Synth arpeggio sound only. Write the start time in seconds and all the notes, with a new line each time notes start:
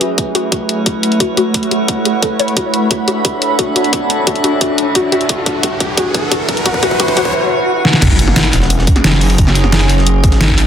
0.01 F#4
0.35 F#4
0.52 F#4
0.86 F#4
1.20 F#4
1.37 F#4
1.71 F#4
2.05 G4
2.22 A4
2.40 C#5
2.57 F#4
2.91 F#4
3.08 F#4
3.25 F#4
3.59 F#4
3.76 F#4
3.93 F#4
4.27 F#4
4.44 F#4
4.61 F#4
4.95 F#4
5.12 F#4
5.29 F#4
5.63 F#4
5.98 F#4
6.32 F#4
6.66 F#4
6.83 F#4
7.00 F#4
7.17 F#4